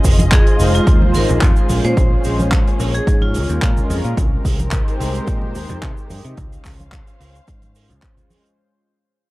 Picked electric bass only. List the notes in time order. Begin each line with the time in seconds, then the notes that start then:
0.04 F1
0.60 F1
0.87 D#2
1.15 G#1
1.29 A#1
1.42 F2
1.70 A#1
1.85 A#2
1.97 A#1
2.25 A#1
2.80 A#1
3.07 G#2
3.35 C#2
3.50 D#2
3.62 A#2
3.90 F2
4.05 A#2
4.17 C2
4.45 C2
5.00 C2
5.27 A#2
5.55 D#2
5.70 F2
5.83 C3
6.10 G2
6.25 C3
6.38 C#2
6.65 C#2
7.20 C#2
7.48 G#2
7.90 C#2